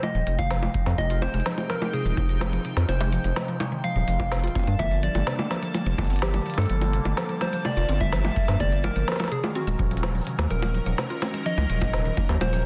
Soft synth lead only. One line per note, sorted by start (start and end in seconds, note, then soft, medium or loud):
0.03 0.40 D#5 loud
0.39 1.00 F5 loud
0.98 1.21 D#5 loud
1.22 1.71 C5 loud
1.70 1.93 A#4 medium
1.93 2.61 G#4 medium
2.89 3.56 C5 loud
3.84 4.81 F5 loud
4.79 5.04 E5 loud
5.03 5.74 D5 medium
6.22 6.60 G4 medium
6.58 7.43 A4 loud
7.41 7.65 C5 loud
7.65 8.02 D5 loud
8.01 8.60 E5 loud
8.60 8.86 D5 loud
8.84 9.33 A#4 loud
9.32 9.55 G#4 loud
9.55 10.23 F#4 medium
10.51 11.18 A#4 loud
11.46 12.43 D#5 loud
12.41 12.66 C5 loud